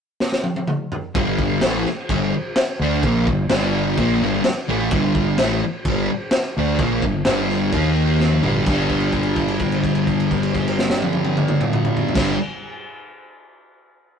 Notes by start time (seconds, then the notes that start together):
0.20 snare
0.32 snare
0.43 high tom
0.56 high tom
0.67 mid tom
0.92 floor tom
1.15 G1 G2 D3 G3, kick, crash
1.39 kick
1.61 A1 A2 E3, snare, crash
1.66 A3
1.84 muted fingered electric bass stroke, muted distorted electric guitar stroke, snare
2.09 G1 G2 D3 G3, kick, crash
2.56 snare, crash
2.79 D2 D3 A3
2.84 D4
3.03 A#1 A#2 F3 A#3, kick, crash
3.27 G1 G2 D3, kick
3.49 G1 G2 D3 G3, snare, crash
3.97 A#1 A#2 F3 A#3, kick, crash
4.20 G1 G2 D3 G3
4.44 muted fingered electric bass stroke, muted distorted electric guitar stroke, snare, crash
4.68 A1 A2 E3 A3
4.91 G1 G2 D3 G3, kick, crash
5.15 kick
5.38 A1 A2 E3 A3, snare, crash
5.61 muted fingered electric bass stroke, muted distorted electric guitar stroke
5.85 G1 G2 D3 G3, kick, crash
6.31 snare, crash
6.56 D2 D3 A3 D4
6.79 A#1 A#2 F3 A#3, kick, crash
7.02 G1 G2 D3, kick
7.25 G1 G2 D3 G3, snare, crash
7.49 snare
7.72 D#2 D#3 A#3 D#4, kick, crash
8.20 snare
8.31 high tom
8.43 G1 G2 D3 G3, mid tom
8.54 floor tom
8.66 G1 G2 D3, kick, crash
8.70 G3
8.90 kick, crash
9.00 crash
9.12 kick, crash
9.23 crash
9.36 kick, crash
9.48 crash
9.59 kick, crash
9.72 crash
9.84 kick, crash
9.95 crash
10.07 kick, crash
10.20 crash
10.31 kick, crash
10.43 crash
10.54 kick, crash
10.68 crash
10.79 snare
10.90 snare
11.02 high tom
11.13 high tom
11.25 high tom
11.37 mid tom
11.48 mid tom
11.61 mid tom
11.73 mid tom
11.85 mid tom
11.97 floor tom
12.09 floor tom
12.15 G1 G2 D3 G3, kick, snare, crash